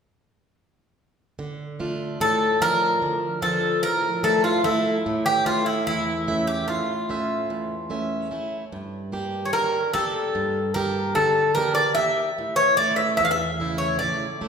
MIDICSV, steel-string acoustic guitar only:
0, 0, Header, 1, 2, 480
1, 0, Start_track
1, 0, Key_signature, -1, "minor"
1, 0, Tempo, 814111
1, 817, Time_signature, 9, 3, 24, 8
1, 8537, End_track
2, 0, Start_track
2, 0, Title_t, "Steel-string acoustic guitar"
2, 0, Program_c, 0, 25
2, 819, Note_on_c, 0, 50, 63
2, 1059, Note_on_c, 0, 57, 42
2, 1062, Note_on_c, 0, 62, 34
2, 1062, Note_on_c, 0, 65, 46
2, 1283, Note_off_c, 0, 50, 0
2, 1300, Note_on_c, 0, 45, 60
2, 1442, Note_off_c, 0, 57, 0
2, 1443, Note_off_c, 0, 62, 0
2, 1444, Note_off_c, 0, 65, 0
2, 1534, Note_on_c, 0, 53, 50
2, 1540, Note_on_c, 0, 62, 38
2, 1540, Note_on_c, 0, 65, 53
2, 1764, Note_off_c, 0, 45, 0
2, 1781, Note_on_c, 0, 50, 55
2, 1920, Note_off_c, 0, 53, 0
2, 1921, Note_off_c, 0, 62, 0
2, 1923, Note_off_c, 0, 65, 0
2, 2016, Note_on_c, 0, 53, 43
2, 2021, Note_on_c, 0, 62, 35
2, 2022, Note_on_c, 0, 65, 54
2, 2244, Note_off_c, 0, 50, 0
2, 2260, Note_on_c, 0, 45, 62
2, 2401, Note_off_c, 0, 53, 0
2, 2402, Note_off_c, 0, 62, 0
2, 2404, Note_off_c, 0, 65, 0
2, 2496, Note_on_c, 0, 57, 45
2, 2501, Note_on_c, 0, 53, 51
2, 2502, Note_on_c, 0, 62, 32
2, 2724, Note_off_c, 0, 45, 0
2, 2732, Note_off_c, 0, 57, 0
2, 2735, Note_off_c, 0, 62, 0
2, 2737, Note_on_c, 0, 57, 49
2, 2744, Note_on_c, 0, 62, 33
2, 2744, Note_on_c, 0, 69, 42
2, 2883, Note_off_c, 0, 53, 0
2, 2930, Note_off_c, 0, 57, 0
2, 2932, Note_off_c, 0, 62, 0
2, 2933, Note_off_c, 0, 69, 0
2, 2985, Note_on_c, 0, 45, 61
2, 3219, Note_on_c, 0, 57, 39
2, 3220, Note_on_c, 0, 61, 38
2, 3227, Note_on_c, 0, 64, 44
2, 3446, Note_off_c, 0, 45, 0
2, 3463, Note_on_c, 0, 40, 60
2, 3602, Note_off_c, 0, 57, 0
2, 3604, Note_off_c, 0, 61, 0
2, 3605, Note_off_c, 0, 64, 0
2, 3699, Note_on_c, 0, 57, 51
2, 3704, Note_on_c, 0, 61, 36
2, 3704, Note_on_c, 0, 76, 56
2, 3926, Note_off_c, 0, 40, 0
2, 3944, Note_on_c, 0, 45, 64
2, 4083, Note_off_c, 0, 57, 0
2, 4083, Note_off_c, 0, 61, 0
2, 4085, Note_off_c, 0, 76, 0
2, 4182, Note_on_c, 0, 57, 47
2, 4184, Note_on_c, 0, 61, 39
2, 4189, Note_on_c, 0, 76, 47
2, 4406, Note_off_c, 0, 45, 0
2, 4423, Note_on_c, 0, 40, 62
2, 4564, Note_off_c, 0, 57, 0
2, 4566, Note_off_c, 0, 61, 0
2, 4567, Note_off_c, 0, 76, 0
2, 4657, Note_on_c, 0, 57, 40
2, 4661, Note_on_c, 0, 61, 34
2, 4663, Note_on_c, 0, 76, 50
2, 4886, Note_off_c, 0, 40, 0
2, 4892, Note_off_c, 0, 57, 0
2, 4896, Note_off_c, 0, 61, 0
2, 4899, Note_on_c, 0, 57, 43
2, 4901, Note_on_c, 0, 61, 43
2, 4906, Note_on_c, 0, 64, 44
2, 5044, Note_off_c, 0, 76, 0
2, 5090, Note_off_c, 0, 57, 0
2, 5092, Note_off_c, 0, 61, 0
2, 5092, Note_off_c, 0, 64, 0
2, 5144, Note_on_c, 0, 43, 68
2, 5379, Note_on_c, 0, 58, 51
2, 5384, Note_on_c, 0, 62, 39
2, 5385, Note_on_c, 0, 67, 55
2, 5606, Note_off_c, 0, 43, 0
2, 5623, Note_on_c, 0, 50, 67
2, 5763, Note_off_c, 0, 58, 0
2, 5764, Note_off_c, 0, 62, 0
2, 5766, Note_off_c, 0, 67, 0
2, 5859, Note_on_c, 0, 58, 58
2, 5865, Note_on_c, 0, 62, 41
2, 5865, Note_on_c, 0, 67, 57
2, 6085, Note_off_c, 0, 50, 0
2, 6103, Note_on_c, 0, 43, 70
2, 6243, Note_off_c, 0, 58, 0
2, 6244, Note_off_c, 0, 62, 0
2, 6246, Note_off_c, 0, 67, 0
2, 6340, Note_on_c, 0, 58, 49
2, 6344, Note_on_c, 0, 62, 43
2, 6345, Note_on_c, 0, 67, 58
2, 6565, Note_off_c, 0, 43, 0
2, 6584, Note_on_c, 0, 50, 61
2, 6723, Note_off_c, 0, 58, 0
2, 6724, Note_off_c, 0, 62, 0
2, 6725, Note_off_c, 0, 67, 0
2, 6819, Note_on_c, 0, 58, 49
2, 6822, Note_on_c, 0, 62, 42
2, 6826, Note_on_c, 0, 67, 41
2, 7046, Note_off_c, 0, 50, 0
2, 7054, Note_off_c, 0, 58, 0
2, 7055, Note_off_c, 0, 62, 0
2, 7058, Note_off_c, 0, 67, 0
2, 7061, Note_on_c, 0, 58, 47
2, 7064, Note_on_c, 0, 62, 30
2, 7065, Note_on_c, 0, 67, 47
2, 7251, Note_off_c, 0, 58, 0
2, 7251, Note_off_c, 0, 62, 0
2, 7253, Note_off_c, 0, 67, 0
2, 7301, Note_on_c, 0, 45, 59
2, 7538, Note_on_c, 0, 57, 42
2, 7541, Note_on_c, 0, 61, 41
2, 7545, Note_on_c, 0, 64, 47
2, 7764, Note_off_c, 0, 45, 0
2, 7781, Note_on_c, 0, 40, 57
2, 7920, Note_off_c, 0, 57, 0
2, 7922, Note_off_c, 0, 61, 0
2, 7924, Note_off_c, 0, 64, 0
2, 8018, Note_on_c, 0, 57, 51
2, 8023, Note_on_c, 0, 49, 43
2, 8026, Note_on_c, 0, 64, 48
2, 8243, Note_off_c, 0, 40, 0
2, 8260, Note_on_c, 0, 45, 60
2, 8400, Note_off_c, 0, 57, 0
2, 8403, Note_off_c, 0, 49, 0
2, 8404, Note_off_c, 0, 64, 0
2, 8496, Note_on_c, 0, 49, 43
2, 8499, Note_on_c, 0, 57, 41
2, 8501, Note_on_c, 0, 64, 47
2, 8537, Note_off_c, 0, 45, 0
2, 8537, Note_off_c, 0, 49, 0
2, 8537, Note_off_c, 0, 57, 0
2, 8537, Note_off_c, 0, 64, 0
2, 8537, End_track
0, 0, End_of_file